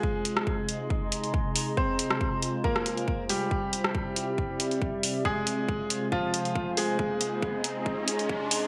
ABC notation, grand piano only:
X:1
M:4/4
L:1/8
Q:1/4=138
K:Fm
V:1 name="Grand piano"
[A,A]8 | [Cc]4 [B,B]3 [G,G]- | [G,G]8 | [A,A]4 [F,F]3 [A,A]- |
[A,A]8 |]